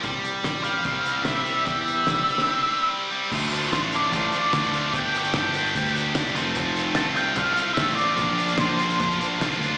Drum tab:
CC |----------------|----------------|x---------------|----------------|
HH |x-x-x-x-x-x-x-x-|x-x-x-x---------|--x-x-x-x-x-xxx-|x-xxx-xxxxx-xxx-|
SD |----o-------o---|----o--o--------|----o-------o---|----o-------o---|
BD |o---o---o---o---|o---o-----------|o---o---o---o---|o---o---o---o---|

CC |----------------|----------------|
HH |x-x-x-x-x-x-xxx-|x-xxx-xxxxx-xxx-|
SD |----o-------o---|----o-------o---|
BD |o---o---o---o---|o---o---o---o---|